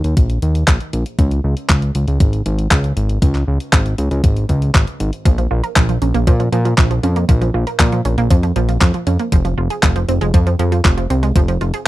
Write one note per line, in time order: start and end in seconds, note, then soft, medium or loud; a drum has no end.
0.04 0.15 D#2 medium
0.04 closed hi-hat soft
0.17 0.39 A#1 medium
0.17 kick loud
0.17 closed hi-hat medium
0.30 closed hi-hat soft
0.42 0.64 D#2 medium
0.42 closed hi-hat medium
0.55 closed hi-hat soft
0.68 0.79 A#1 medium
0.68 kick loud
0.68 clap loud
0.68 closed hi-hat medium
0.80 closed hi-hat soft
0.93 1.04 A#1 medium
0.93 closed hi-hat medium
1.06 closed hi-hat soft
1.19 1.40 C#2 loud
1.19 kick loud
1.19 closed hi-hat medium
1.31 closed hi-hat soft
1.44 1.55 C#2 loud
1.57 closed hi-hat soft
1.69 1.91 C#2 medium
1.69 kick loud
1.69 clap loud
1.69 closed hi-hat medium
1.82 closed hi-hat soft
1.95 2.06 C#2 medium
1.95 closed hi-hat medium
2.08 2.18 C#2 medium
2.08 closed hi-hat soft
2.20 2.42 G#1 loud
2.20 kick loud
2.20 closed hi-hat medium
2.33 closed hi-hat soft
2.46 2.67 G#1 loud
2.46 closed hi-hat medium
2.59 closed hi-hat soft
2.71 2.93 C#2 medium
2.71 kick loud
2.71 clap loud
2.71 closed hi-hat medium
2.84 closed hi-hat soft
2.97 3.18 G#1 medium
2.97 closed hi-hat medium
3.09 closed hi-hat soft
3.22 3.44 C#2 loud
3.22 kick loud
3.22 closed hi-hat medium
3.35 clap soft
3.35 closed hi-hat soft
3.48 3.58 C#2 medium
3.60 closed hi-hat soft
3.73 3.95 G#1 medium
3.73 kick loud
3.73 clap loud
3.73 closed hi-hat medium
3.86 closed hi-hat soft
3.98 4.09 C#2 medium
3.98 closed hi-hat medium
4.11 4.22 C#2 medium
4.11 closed hi-hat soft
4.24 4.45 G#1 medium
4.24 kick loud
4.24 closed hi-hat medium
4.37 closed hi-hat soft
4.49 4.71 C#2 medium
4.49 kick medium
4.49 closed hi-hat medium
4.62 closed hi-hat soft
4.75 4.85 G#1 medium
4.75 kick loud
4.75 clap loud
4.75 closed hi-hat medium
4.87 closed hi-hat soft
5.00 5.11 G#1 medium
5.00 closed hi-hat medium
5.13 closed hi-hat soft
5.25 5.47 A#1 medium
5.25 5.30 F3 loud
5.25 kick loud
5.25 closed hi-hat medium
5.38 5.49 F3 medium
5.38 closed hi-hat soft
5.51 5.62 A#1 medium
5.51 5.55 F4 medium
5.64 5.71 A#4 medium
5.64 closed hi-hat soft
5.76 5.98 A#1 medium
5.76 5.83 F3 medium
5.76 kick loud
5.76 clap loud
5.76 closed hi-hat medium
5.89 5.96 F3 medium
5.89 closed hi-hat soft
6.02 6.13 A#1 medium
6.02 6.09 C#4 medium
6.02 closed hi-hat medium
6.14 6.25 A#1 medium
6.14 6.21 A#3 loud
6.14 closed hi-hat soft
6.27 6.49 A#2 medium
6.27 6.31 F3 loud
6.27 kick loud
6.27 closed hi-hat medium
6.40 6.50 F3 medium
6.40 closed hi-hat soft
6.52 6.74 A#2 loud
6.52 6.63 F3 medium
6.52 closed hi-hat medium
6.65 6.76 F3 medium
6.65 closed hi-hat soft
6.78 7.00 A#1 medium
6.78 6.85 F3 loud
6.78 kick loud
6.78 clap loud
6.78 closed hi-hat medium
6.91 6.95 F3 medium
6.91 closed hi-hat soft
7.03 7.25 F2 medium
7.03 7.10 C#4 medium
7.03 closed hi-hat medium
7.16 7.23 A#3 medium
7.16 closed hi-hat soft
7.29 7.51 A#1 loud
7.29 7.33 F3 medium
7.29 kick loud
7.29 closed hi-hat medium
7.42 7.52 F3 medium
7.42 closed hi-hat soft
7.54 7.65 A#1 medium
7.54 7.58 F4 medium
7.67 7.74 A#4 medium
7.67 closed hi-hat soft
7.80 8.01 A#2 medium
7.80 7.87 F3 loud
7.80 kick loud
7.80 clap loud
7.80 closed hi-hat medium
7.92 7.99 F3 medium
7.92 closed hi-hat soft
8.05 8.16 A#1 medium
8.05 8.12 C#4 medium
8.05 closed hi-hat medium
8.18 8.29 A#1 medium
8.18 8.25 A#3 loud
8.18 closed hi-hat soft
8.30 8.52 F2 medium
8.30 8.35 F3 medium
8.30 kick loud
8.30 closed hi-hat medium
8.43 8.54 F3 medium
8.43 closed hi-hat soft
8.56 8.78 A#1 medium
8.56 8.66 F3 loud
8.56 closed hi-hat medium
8.69 8.79 F3 medium
8.69 closed hi-hat soft
8.81 8.92 F2 medium
8.81 8.88 F3 loud
8.81 kick loud
8.81 clap loud
8.81 closed hi-hat medium
8.94 8.98 F3 medium
8.94 closed hi-hat soft
9.07 9.18 F2 medium
9.07 9.14 C#4 medium
9.07 closed hi-hat medium
9.19 9.27 A#3 medium
9.19 closed hi-hat soft
9.32 9.54 F1 loud
9.32 9.36 F3 loud
9.32 kick loud
9.32 closed hi-hat medium
9.45 9.55 F3 medium
9.45 closed hi-hat soft
9.58 9.68 F1 loud
9.58 9.62 F4 medium
9.70 9.77 G#4 medium
9.70 closed hi-hat soft
9.83 10.05 F1 medium
9.83 9.90 F3 loud
9.83 kick loud
9.83 clap loud
9.83 closed hi-hat medium
9.96 10.03 F3 medium
9.96 closed hi-hat soft
10.08 10.19 F1 medium
10.08 10.16 C4 medium
10.08 closed hi-hat medium
10.21 10.32 F1 medium
10.21 10.28 G#3 loud
10.21 closed hi-hat soft
10.34 10.56 F2 medium
10.34 10.38 F3 loud
10.34 kick loud
10.34 closed hi-hat medium
10.47 10.57 F3 medium
10.47 closed hi-hat soft
10.59 10.81 F2 loud
10.59 10.70 F3 medium
10.59 closed hi-hat medium
10.72 10.83 F3 medium
10.72 closed hi-hat soft
10.85 11.06 F1 medium
10.85 10.92 F3 loud
10.85 kick loud
10.85 clap loud
10.85 closed hi-hat medium
10.97 11.02 F3 medium
10.97 closed hi-hat soft
11.10 11.32 C2 medium
11.10 11.17 C4 medium
11.10 closed hi-hat medium
11.23 11.30 G#3 medium
11.23 closed hi-hat soft
11.36 11.57 F1 loud
11.36 11.40 F3 loud
11.36 kick loud
11.36 closed hi-hat medium
11.48 11.59 F3 medium
11.48 closed hi-hat soft
11.61 11.72 F1 medium
11.61 11.65 F4 medium
11.61 closed hi-hat soft
11.74 11.81 G#4 medium
11.74 closed hi-hat soft